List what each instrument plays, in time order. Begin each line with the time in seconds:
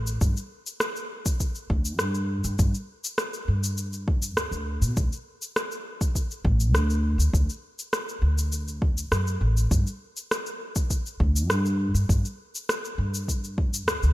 Already playing: upright bass A1
0.07 cabasa
0.21 upright bass G2, kick, cabasa
0.37 cabasa
0.66 cabasa
0.80 cross-stick, cabasa
0.96 cabasa
1.26 kick, cabasa
1.40 kick, cabasa
1.55 cabasa
1.70 upright bass D2, kick
1.85 cabasa
1.99 upright bass G2, cross-stick, cabasa
2.15 cabasa
2.44 upright bass G2, cabasa
2.59 upright bass G2, kick, cabasa
2.74 cabasa
3.04 cabasa
3.18 cross-stick, cabasa
3.33 cabasa
3.48 upright bass G2
3.64 cabasa
3.78 cabasa
3.93 cabasa
4.08 kick
4.22 cabasa
4.36 upright bass D2, cross-stick, cabasa
4.51 upright bass D2, cabasa
4.82 upright bass B2, cabasa
4.97 upright bass D2, kick, cabasa
5.13 cabasa
5.42 cabasa
5.56 cross-stick, cabasa
5.72 cabasa
6.01 kick, cabasa
6.15 kick, cabasa
6.31 cabasa
6.45 upright bass A1, kick
6.60 cabasa
6.74 upright bass D2, cross-stick, cabasa
6.90 cabasa
7.18 upright bass D2, cabasa
7.33 upright bass D2, kick, cabasa
7.50 cabasa
7.79 cabasa
7.93 cross-stick, cabasa
8.09 cabasa
8.22 upright bass D2
8.38 cabasa
8.52 cabasa
8.68 cabasa
8.82 kick
8.98 cabasa
9.12 upright bass F#2, cross-stick, cabasa
9.27 cabasa
9.41 upright bass A1
9.57 cabasa
9.71 upright bass G2, kick, cabasa
9.87 cabasa
10.17 cabasa
10.31 cross-stick, cabasa
10.46 cabasa
10.76 kick, cabasa
10.90 kick, cabasa
11.06 cabasa
11.20 upright bass D2, kick
11.36 cabasa
11.49 upright bass G2, cross-stick, cabasa
11.65 cabasa
11.94 upright bass G2, cabasa
12.09 upright bass G2, kick, cabasa
12.25 cabasa
12.55 cabasa
12.69 cross-stick, cabasa
12.85 cabasa
12.98 upright bass G2
13.14 cabasa
13.28 kick, cabasa
13.44 cabasa
13.58 kick
13.74 cabasa
13.88 upright bass D2, cross-stick, cabasa
14.03 upright bass D2, cabasa